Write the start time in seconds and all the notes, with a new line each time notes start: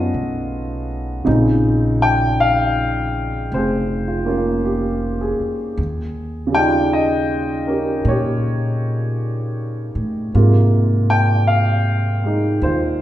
Already playing: C#3 A3 B3 C#4 D#4 F4 A4 D#5
0.14 B1
1.25 A#1 C#3 G#3 C4 D#4
2.02 G5
2.40 F5
3.52 F1 C5
3.56 G#4
4.08 F4
4.25 A#3 C#4 F4
4.65 G4
5.21 G#4
5.40 muted upright bass stroke
5.78 D#2
6.47 C#3
6.52 G3 D#4 G5
6.58 F4
6.93 D#5
7.67 C#4 G4 A#4
8.05 A#2 C#5
8.10 G4
9.95 A2
10.34 G#2 C3 G#3 A#3 F4
11.10 G5
11.47 F5
12.24 G#3 D#4
12.62 D#2 F4 C5